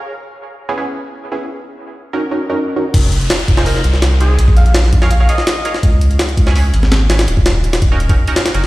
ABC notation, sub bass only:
X:1
M:4/4
L:1/8
Q:1/4=166
K:Fphr
V:1 name="Sub bass" clef=bass
z8 | z8 | F,,,2 z F,,,2 C,,3 | B,,,2 B,,, B,,,2 z3 |
D,,2 z D,,2 A,,,3 | E,,,2 E,,, E,,,2 z2 G,,, |]